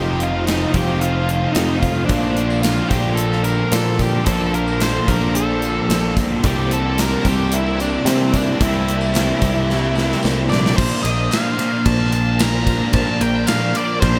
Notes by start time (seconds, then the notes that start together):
Already playing: F1 F2 C3 D#3 F3 A3 D#4 F4 G4 C5 D#5 F5
0.20 F4, closed hi-hat
0.46 D#4, snare, closed hi-hat
0.73 F1 F2 C3 D#3 A3 D#4 F4 G4, kick, closed hi-hat
1.00 F4, closed hi-hat
1.29 closed hi-hat
1.53 F2 D#4, snare, closed hi-hat
1.80 F4, kick, closed hi-hat
2.06 A#1 A#2 D3 D4 A4 D5, kick, closed hi-hat
2.10 F3 A#3 D4 F4
2.23 tambourine
2.37 closed hi-hat, tambourine
2.50 tambourine
2.62 F4, snare, closed hi-hat, tambourine
2.78 tambourine
2.88 A#1 D3 A#3 D4 F4 G4, kick, closed hi-hat, tambourine
2.93 A#2
3.06 tambourine
3.15 A4, closed hi-hat
3.20 tambourine
3.32 snare, tambourine
3.44 A#4, closed hi-hat, tambourine
3.72 A#2 A4, snare, closed hi-hat, tambourine
3.99 G4, kick, closed hi-hat, tambourine
4.24 A#1 A#2 D3 F3 A#3 D4 F4 A4, kick, closed hi-hat
4.40 tambourine
4.54 A#4, closed hi-hat, tambourine
4.68 tambourine
4.80 C5, snare, closed hi-hat, tambourine
4.95 tambourine
5.06 A#1 A#2 D3 A#3 D4 F4 A#4, kick, closed hi-hat, tambourine
5.22 tambourine
5.35 A4, closed hi-hat, tambourine
5.50 tambourine
5.62 closed hi-hat, tambourine
5.89 A#1, snare, closed hi-hat, tambourine
6.17 kick, closed hi-hat, tambourine
6.43 C2 C3 G3 A#3 C4 E4 G4 A#4 A5, kick, closed hi-hat
6.59 tambourine
6.71 A4, closed hi-hat, tambourine
6.98 A#4, snare, closed hi-hat, tambourine
7.12 tambourine
7.24 C2 C3 G3 A#3 E4 G4, kick, closed hi-hat, tambourine
7.29 G4
7.39 tambourine
7.52 E4, closed hi-hat, tambourine
7.66 tambourine
7.80 D4, closed hi-hat, tambourine
8.05 C3 C4, snare, closed hi-hat, tambourine
8.33 D4, kick, closed hi-hat, tambourine
8.59 C2 C3 G3 A#3 C4 E4 G4, kick, closed hi-hat, tambourine
8.74 tambourine
8.88 closed hi-hat, tambourine
9.01 tambourine
9.14 snare, closed hi-hat, tambourine
9.41 C2 C3 G3 A#3 E4 G4, kick, closed hi-hat, tambourine
9.56 tambourine
9.70 snare
9.82 tambourine
9.95 snare, tambourine
10.09 snare, tambourine
10.23 C2, snare, tambourine
10.36 tambourine
10.49 A#1 D5, snare, tambourine
10.64 snare, tambourine
10.76 A#1 A#2 F3 A#3 D4 A#4 C5 F5, kick, crash
11.03 A#1 D#5, ride
11.30 F5, snare, ride, tambourine
11.57 A#2 F3 A#3, ride
11.86 A#1 A5, kick, ride
12.12 A5, ride
12.39 A#5, snare, ride, tambourine
12.67 kick, ride
12.92 A#1 A#2 F3 A#3 D5 A5, kick, ride
13.21 A#1 G5, ride
13.47 F5, snare, ride, tambourine
13.75 A#2 F3 A#3 D5, ride
14.00 A#1 C5, kick, ride